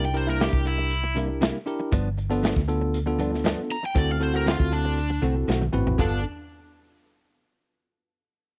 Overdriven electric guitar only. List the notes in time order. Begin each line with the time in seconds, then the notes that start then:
0.05 G5
0.17 C5
0.30 A#4
0.42 G4
0.67 E4
3.72 A#5
3.86 G5
3.98 D5
4.11 F5
4.23 C5
4.36 A#4
4.48 F4
4.73 D4
6.01 D4